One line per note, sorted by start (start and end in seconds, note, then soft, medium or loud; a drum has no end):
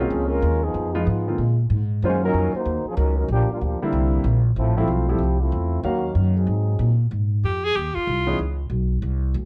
0.00 0.40 G#3 medium
0.00 0.40 A#3 medium
0.00 0.40 C4 medium
0.00 0.40 C#4 medium
0.00 0.40 F4 medium
0.09 0.41 C#2 medium
0.09 0.30 F3 medium
0.09 0.30 C4 medium
0.09 0.27 C#4 medium
0.09 0.30 G#4 loud
0.28 0.61 G#3 loud
0.28 0.61 C#4 medium
0.28 0.62 F4 loud
0.28 0.62 A#4 loud
0.42 0.73 D#2 loud
0.63 0.95 F3 medium
0.63 0.94 B3 medium
0.63 0.94 D#4 medium
0.63 0.95 G#4 loud
0.74 1.05 F2 medium
0.94 1.05 F3 medium
0.94 1.05 G#3 medium
0.94 1.59 G#3 medium
0.94 1.05 B3 medium
0.94 1.38 B3 medium
0.94 1.05 D#4 medium
0.94 1.38 D#4 medium
0.94 1.05 F4 medium
0.94 1.59 F4 medium
1.07 1.37 G#2 medium
1.28 1.37 D3 medium
1.28 1.37 G#3 soft
1.28 1.38 A#3 medium
1.28 1.38 C4 medium
1.28 1.38 F4 medium
1.38 1.69 A#2 medium
1.70 2.01 G#2 medium
2.02 2.33 F#2 medium
2.02 2.51 D#3 medium
2.02 2.51 F#3 medium
2.02 2.22 G#3 loud
2.02 2.51 A#3 medium
2.02 2.51 C#4 medium
2.02 2.22 C#4 loud
2.02 2.22 F4 medium
2.02 2.51 F4 medium
2.02 2.22 C5 loud
2.24 2.53 F#3 loud
2.24 2.53 C#4 medium
2.24 2.53 D#4 loud
2.24 2.53 A#4 loud
2.34 2.52 F2 medium
2.54 2.84 A#3 medium
2.54 2.84 D#4 medium
2.54 2.84 F#4 medium
2.54 2.84 C5 loud
2.54 muted upright bass stroke soft
2.65 2.84 D#2 medium
2.85 2.98 A#3 medium
2.85 2.98 G#4 loud
2.85 muted upright bass stroke soft
2.89 2.99 F3 medium
2.89 2.96 C#4 medium
2.97 3.28 C#2 loud
2.97 3.16 F#3 medium
2.97 3.16 C#4 medium
2.97 3.16 D#4 medium
2.97 3.16 A#4 medium
3.18 3.28 F#3 medium
3.18 3.29 C#4 medium
3.18 3.29 D#4 medium
3.18 3.29 A#4 medium
3.28 3.47 A#1 medium
3.28 3.49 F3 medium
3.28 3.49 A#3 medium
3.28 3.49 D4 loud
3.28 3.49 G4 loud
3.49 3.62 G3 medium
3.49 3.61 A#3 medium
3.49 3.61 D4 medium
3.49 3.61 F4 loud
3.49 muted upright bass stroke soft
3.61 3.80 D2 medium
3.61 3.82 F3 medium
3.61 3.82 A#3 medium
3.61 3.82 D4 medium
3.61 3.82 G4 medium
3.82 4.23 D3 medium
3.82 4.23 G3 medium
3.82 4.42 G3 medium
3.82 4.23 A#3 medium
3.82 4.42 A#3 medium
3.82 4.23 C4 medium
3.82 4.42 C4 medium
3.82 4.23 E4 medium
3.82 4.42 E4 medium
3.82 muted upright bass stroke soft
3.92 4.23 C2 medium
4.24 4.55 A#1 medium
4.56 4.87 A1 medium
4.56 4.76 F3 medium
4.56 4.76 A3 medium
4.56 4.75 C4 medium
4.56 4.76 E4 loud
4.76 4.87 F3 medium
4.76 4.87 G3 medium
4.76 5.09 A3 medium
4.76 4.87 A3 medium
4.76 5.07 C4 medium
4.76 4.88 C4 medium
4.76 5.08 E4 medium
4.76 4.88 E4 medium
4.76 5.09 F4 medium
4.87 5.18 B1 medium
5.08 5.19 F3 medium
5.08 5.41 F3 medium
5.08 5.19 G3 soft
5.08 5.19 A3 medium
5.08 5.39 C4 medium
5.08 5.20 C4 medium
5.08 5.19 E4 medium
5.08 5.39 E4 medium
5.08 5.41 G4 loud
5.18 5.50 C2 medium
5.40 5.84 A3 medium
5.40 5.84 C4 medium
5.40 5.84 E4 medium
5.40 5.84 F4 medium
5.52 5.83 E2 medium
5.83 6.14 D#2 medium
5.83 6.13 D#3 medium
5.83 6.32 D#3 medium
5.83 6.32 F#3 soft
5.83 6.14 A#3 medium
5.83 6.32 A#3 soft
5.83 6.13 C#4 medium
5.83 6.32 C#4 soft
5.83 6.13 F#4 loud
5.83 6.32 F5 medium
6.15 6.46 F#2 medium
6.35 6.95 F#3 medium
6.35 6.95 C4 medium
6.35 6.95 D#4 medium
6.35 6.95 G#4 medium
6.47 6.78 G#2 medium
6.79 7.10 A#2 medium
7.11 7.42 G#2 medium
7.43 7.74 F2 medium
7.43 7.66 G4 medium
7.64 7.77 G#4 loud
7.75 7.94 D#2 medium
7.75 7.96 G4 medium
7.95 8.38 F4 medium
7.95 muted upright bass stroke soft
8.07 8.38 C2 medium
8.27 8.37 E3 medium
8.27 8.37 B3 medium
8.27 8.37 C#4 medium
8.27 8.37 D#4 medium
8.27 8.38 G#4 medium
8.39 8.69 C#2 medium
8.70 9.01 B1 medium
9.02 9.33 C2 medium
9.34 9.45 D2 loud